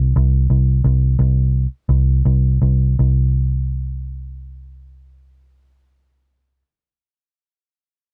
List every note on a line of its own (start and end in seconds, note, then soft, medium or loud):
0.00 0.12 C2 medium
0.16 0.46 C2 medium
0.50 0.80 C2 medium
0.84 1.15 C2 medium
1.19 1.65 C2 medium
1.89 2.21 C2 medium
2.25 2.58 C2 medium
2.62 2.95 C2 medium
2.99 6.62 C2 medium